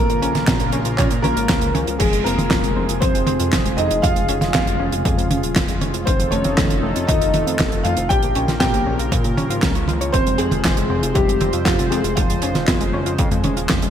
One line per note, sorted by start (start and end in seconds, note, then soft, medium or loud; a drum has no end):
0.00 1.98 C#3 medium
0.00 6.03 F3 medium
0.00 0.69 A#3 medium
0.00 1.98 A#3 medium
0.00 1.98 F4 medium
0.00 0.68 A#4 loud
0.00 1.98 A#4 medium
0.09 0.20 A#1 medium
0.09 0.20 A#3 medium
0.09 closed hi-hat medium
0.22 0.33 A#1 medium
0.22 0.28 C#4 loud
0.22 closed hi-hat medium
0.35 0.46 A#1 medium
0.35 0.41 F4 medium
0.35 snare soft
0.35 closed hi-hat soft
0.35 high tom medium
0.47 0.58 A#1 loud
0.47 0.60 F3 medium
0.47 kick loud
0.47 snare loud
0.47 clap loud
0.47 closed hi-hat loud
0.60 0.71 A#1 medium
0.60 0.70 A#3 medium
0.60 closed hi-hat medium
0.72 0.84 A#1 medium
0.72 0.79 C#4 loud
0.72 closed hi-hat medium
0.85 0.96 A#1 medium
0.85 0.92 F4 medium
0.85 closed hi-hat medium
0.97 1.09 A#2 loud
0.97 1.10 F3 medium
0.97 1.05 C#4 medium
0.97 1.03 C#5 loud
0.97 kick loud
0.97 clap medium
0.97 closed hi-hat loud
0.97 high tom medium
1.10 1.22 A#2 medium
1.10 1.21 A#3 medium
1.10 closed hi-hat medium
1.22 1.35 A#1 loud
1.22 1.72 A#3 medium
1.22 1.30 C#4 loud
1.22 1.70 A#4 loud
1.22 closed hi-hat medium
1.22 high tom medium
1.36 1.47 G#1 medium
1.36 1.43 F4 medium
1.36 closed hi-hat medium
1.48 1.60 C#2 loud
1.48 1.61 F3 medium
1.48 kick loud
1.48 snare loud
1.48 clap medium
1.48 closed hi-hat loud
1.61 1.73 C#2 medium
1.61 1.72 A#3 medium
1.61 closed hi-hat medium
1.74 1.86 C#2 loud
1.74 1.81 C#4 loud
1.74 closed hi-hat medium
1.74 high tom medium
1.87 1.98 C#2 medium
1.87 1.94 F4 medium
1.87 closed hi-hat medium
1.99 2.11 F1 medium
1.99 4.01 C3 medium
1.99 2.12 F3 medium
1.99 6.03 G#3 medium
1.99 2.24 G#3 medium
1.99 13.90 F4 medium
1.99 2.23 G#4 medium
1.99 6.03 G#4 medium
1.99 kick loud
1.99 closed hi-hat medium
1.99 crash medium
2.13 2.24 F1 medium
2.13 2.23 G#3 medium
2.13 closed hi-hat medium
2.24 2.36 F1 loud
2.24 2.98 A#3 medium
2.24 2.32 C4 loud
2.24 2.97 A#4 medium
2.24 closed hi-hat medium
2.38 2.49 F1 medium
2.38 2.44 F4 medium
2.38 closed hi-hat medium
2.38 high tom medium
2.51 2.62 F1 loud
2.51 2.63 F3 medium
2.51 kick loud
2.51 snare loud
2.51 clap loud
2.51 closed hi-hat loud
2.64 2.75 F1 medium
2.64 2.74 G#3 medium
2.64 closed hi-hat medium
2.76 2.87 F1 medium
2.76 2.82 C4 loud
2.89 3.00 F1 medium
2.89 2.95 F4 medium
2.89 closed hi-hat medium
3.00 3.13 F1 loud
3.00 3.14 F3 medium
3.00 3.75 C4 medium
3.00 3.73 C5 medium
3.00 kick loud
3.00 closed hi-hat loud
3.14 3.25 F1 medium
3.14 3.25 G#3 medium
3.14 closed hi-hat medium
3.27 3.38 F1 medium
3.27 3.33 C4 loud
3.27 closed hi-hat medium
3.27 high tom medium
3.40 3.51 F2 medium
3.40 3.46 F4 medium
3.40 closed hi-hat medium
3.53 3.64 F1 loud
3.53 3.65 F3 medium
3.53 kick loud
3.53 snare loud
3.53 clap loud
3.53 closed hi-hat loud
3.65 3.76 F1 medium
3.65 3.76 G#3 medium
3.65 closed hi-hat medium
3.77 3.89 F2 loud
3.77 3.84 C4 loud
3.77 4.02 D#4 medium
3.77 4.04 D#5 loud
3.77 closed hi-hat medium
3.91 4.02 F1 medium
3.91 3.97 F4 medium
3.91 closed hi-hat medium
4.02 4.14 F1 loud
4.02 6.05 C#3 medium
4.02 4.16 F3 medium
4.02 4.51 F4 medium
4.02 4.50 F5 loud
4.02 kick loud
4.02 closed hi-hat loud
4.16 4.27 F1 medium
4.16 4.26 G#3 medium
4.16 closed hi-hat medium
4.29 4.40 F1 medium
4.29 4.35 C#4 loud
4.29 closed hi-hat medium
4.41 4.53 F1 medium
4.41 4.48 F4 medium
4.41 snare soft
4.41 closed hi-hat medium
4.41 high tom medium
4.53 4.65 F1 loud
4.53 4.66 F3 medium
4.53 5.52 F4 medium
4.53 5.51 F5 loud
4.53 kick loud
4.53 snare loud
4.53 clap loud
4.53 closed hi-hat loud
4.67 4.78 F1 medium
4.67 4.77 G#3 medium
4.67 closed hi-hat medium
4.80 4.91 F1 loud
4.80 4.86 C#4 loud
4.92 5.03 F1 medium
4.92 4.99 F4 medium
4.92 closed hi-hat medium
5.05 5.16 F2 loud
5.05 5.17 F3 medium
5.05 kick loud
5.05 closed hi-hat medium
5.18 5.29 F2 medium
5.18 5.28 G#3 medium
5.18 closed hi-hat medium
5.31 5.41 F1 loud
5.31 5.37 C#4 loud
5.31 closed hi-hat medium
5.31 high tom medium
5.43 5.54 D#1 medium
5.43 5.50 F4 medium
5.43 closed hi-hat medium
5.56 5.67 F1 loud
5.56 5.68 F3 medium
5.56 kick loud
5.56 snare loud
5.56 clap medium
5.56 closed hi-hat loud
5.68 5.80 F1 medium
5.68 5.79 G#3 medium
5.68 closed hi-hat medium
5.81 5.92 F1 loud
5.81 5.88 C#4 loud
5.81 closed hi-hat medium
5.81 high tom medium
5.94 6.05 F1 medium
5.94 6.00 F4 medium
5.94 closed hi-hat medium
6.05 6.18 F1 loud
6.05 6.19 D#3 medium
6.05 8.08 D#3 medium
6.05 8.08 A3 medium
6.05 6.31 C4 medium
6.05 8.08 D#4 medium
6.05 8.08 A4 medium
6.05 6.30 C5 medium
6.05 kick loud
6.05 closed hi-hat loud
6.19 6.30 F1 medium
6.19 6.30 F3 medium
6.19 closed hi-hat medium
6.31 6.43 F1 loud
6.31 6.38 A3 loud
6.31 7.05 C#4 medium
6.31 7.10 C#5 medium
6.31 closed hi-hat medium
6.44 6.56 F1 medium
6.44 6.51 C4 medium
6.44 closed hi-hat medium
6.44 high tom medium
6.58 6.69 F1 loud
6.58 6.70 D#3 medium
6.58 kick loud
6.58 snare loud
6.58 clap medium
6.58 closed hi-hat loud
6.70 6.81 F1 medium
6.70 6.81 F3 medium
6.70 closed hi-hat medium
6.83 6.94 F1 loud
6.83 6.89 A3 loud
6.96 7.07 F1 medium
6.96 7.02 C4 medium
6.96 closed hi-hat medium
7.07 7.19 F1 loud
7.07 7.21 D#3 medium
7.07 7.81 D#4 medium
7.07 7.86 D#5 loud
7.07 kick loud
7.07 closed hi-hat medium
7.21 7.32 F1 medium
7.21 7.32 F3 medium
7.21 closed hi-hat medium
7.34 7.45 F1 medium
7.34 7.40 A3 loud
7.34 closed hi-hat medium
7.34 high tom medium
7.47 7.58 F2 medium
7.47 7.53 C4 medium
7.47 closed hi-hat medium
7.59 7.70 F1 loud
7.59 7.71 D#3 medium
7.59 kick loud
7.59 snare loud
7.59 clap loud
7.59 closed hi-hat medium
7.72 7.83 F1 medium
7.72 7.82 F3 medium
7.72 closed hi-hat soft
7.83 7.96 F2 loud
7.83 7.91 A3 loud
7.83 8.09 F4 medium
7.83 8.08 F5 loud
7.83 closed hi-hat medium
7.97 8.08 F1 medium
7.97 8.04 C4 medium
7.97 closed hi-hat medium
8.09 8.21 A#1 loud
8.09 10.12 C#3 medium
8.09 12.13 F3 medium
8.09 8.22 F3 medium
8.09 10.12 A#3 medium
8.09 8.58 G4 medium
8.09 10.12 A#4 medium
8.09 8.58 G5 loud
8.09 kick loud
8.09 closed hi-hat medium
8.22 8.34 A#1 medium
8.22 8.33 A#3 medium
8.22 closed hi-hat medium
8.35 8.47 A#1 medium
8.35 8.42 C#4 loud
8.35 closed hi-hat medium
8.48 8.59 A#1 medium
8.48 8.55 F4 medium
8.48 snare soft
8.48 closed hi-hat medium
8.48 high tom medium
8.60 8.72 A#1 loud
8.60 8.73 F3 medium
8.60 9.59 G4 medium
8.60 9.58 G5 loud
8.60 kick loud
8.60 snare loud
8.60 clap medium
8.60 closed hi-hat loud
8.74 8.85 A#1 medium
8.74 8.84 A#3 medium
8.74 closed hi-hat medium
8.86 8.97 A#1 medium
8.86 8.93 C#4 loud
8.99 9.10 A#1 medium
8.99 9.05 F4 medium
8.99 closed hi-hat medium
9.12 9.23 A#2 loud
9.12 9.24 F3 medium
9.12 kick loud
9.12 closed hi-hat loud
9.24 9.36 A#2 medium
9.24 9.35 A#3 medium
9.24 closed hi-hat medium
9.37 9.48 A#1 loud
9.37 9.49 C#4 loud
9.37 closed hi-hat medium
9.37 high tom medium
9.50 9.61 G#1 medium
9.50 9.62 F4 loud
9.50 closed hi-hat medium
9.62 9.74 C#2 loud
9.62 9.75 C#4 medium
9.62 kick loud
9.62 snare loud
9.62 clap medium
9.62 closed hi-hat medium
9.75 9.86 C#2 medium
9.75 9.86 C#5 medium
9.75 closed hi-hat medium
9.88 9.99 C#2 loud
9.88 10.00 F4 medium
9.88 closed hi-hat medium
9.88 high tom medium
10.01 10.12 C#2 medium
10.01 10.11 C#5 loud
10.01 closed hi-hat medium
10.12 10.25 F1 loud
10.12 12.15 C3 medium
10.12 10.26 F3 medium
10.12 12.15 C4 medium
10.12 10.38 C4 medium
10.12 10.37 C5 loud
10.12 13.90 C5 medium
10.12 kick loud
10.12 closed hi-hat loud
10.26 10.37 F1 medium
10.26 10.37 G#3 medium
10.26 closed hi-hat medium
10.38 10.50 F1 loud
10.38 11.12 G#3 medium
10.38 10.45 C4 loud
10.38 11.17 G#4 loud
10.38 closed hi-hat medium
10.51 10.63 F1 medium
10.51 10.58 F4 medium
10.51 closed hi-hat medium
10.51 high tom medium
10.65 10.75 F1 loud
10.65 10.77 F3 medium
10.65 kick loud
10.65 snare loud
10.65 clap medium
10.65 closed hi-hat medium
10.77 10.88 F1 medium
10.77 10.88 G#3 medium
10.77 closed hi-hat medium
10.90 11.01 F1 loud
10.90 10.96 C4 loud
11.03 11.14 F1 medium
11.03 11.09 F4 medium
11.03 closed hi-hat medium
11.14 11.26 F1 loud
11.14 11.27 F3 medium
11.14 11.63 G3 medium
11.14 11.67 G4 loud
11.14 kick loud
11.14 closed hi-hat medium
11.28 11.39 F1 medium
11.28 11.38 G#3 medium
11.28 closed hi-hat medium
11.41 11.52 F1 medium
11.41 11.47 C4 loud
11.41 closed hi-hat medium
11.41 high tom medium
11.53 11.64 F2 medium
11.53 11.60 F4 medium
11.53 closed hi-hat medium
11.65 11.77 F1 loud
11.65 11.78 F3 medium
11.65 11.90 F3 medium
11.65 11.92 F4 medium
11.65 kick loud
11.65 snare loud
11.65 clap medium
11.65 closed hi-hat loud
11.79 11.90 F1 medium
11.79 11.89 G#3 medium
11.79 closed hi-hat medium
11.90 12.03 F2 loud
11.90 12.16 G#3 medium
11.90 11.98 C4 loud
11.90 12.15 G#4 medium
11.90 closed hi-hat medium
12.04 12.15 F1 medium
12.04 12.11 F4 medium
12.04 closed hi-hat medium
12.16 12.28 F1 medium
12.16 13.90 C#3 medium
12.16 12.29 F3 medium
12.16 13.90 F3 medium
12.16 13.90 G#3 medium
12.16 13.90 F4 medium
12.16 kick loud
12.16 closed hi-hat medium
12.30 12.41 F1 medium
12.30 12.40 G#3 medium
12.30 closed hi-hat medium
12.42 12.53 F1 medium
12.42 12.49 C#4 loud
12.42 closed hi-hat medium
12.54 12.66 F1 medium
12.54 12.61 F4 medium
12.54 snare soft
12.54 closed hi-hat medium
12.54 high tom medium
12.68 12.79 F1 loud
12.68 12.80 F3 medium
12.68 kick loud
12.68 snare loud
12.68 clap medium
12.68 closed hi-hat loud
12.81 12.91 F1 medium
12.81 12.91 G#3 medium
12.81 closed hi-hat medium
12.93 13.04 F1 loud
12.93 13.00 C#4 loud
13.06 13.17 F1 medium
13.06 13.12 F4 medium
13.06 closed hi-hat medium
13.19 13.30 F2 loud
13.19 13.31 F3 medium
13.19 kick loud
13.19 closed hi-hat loud
13.31 13.42 F2 medium
13.31 13.42 G#3 medium
13.31 closed hi-hat medium
13.44 13.55 F1 loud
13.44 13.50 C#4 loud
13.44 closed hi-hat medium
13.44 high tom medium
13.57 13.68 D#1 medium
13.57 13.63 F4 medium
13.57 closed hi-hat medium
13.69 13.80 F1 loud
13.69 13.82 F3 medium
13.69 kick loud
13.69 snare loud
13.69 clap medium
13.69 closed hi-hat loud
13.82 13.90 F1 medium
13.82 13.90 G#3 medium
13.82 closed hi-hat medium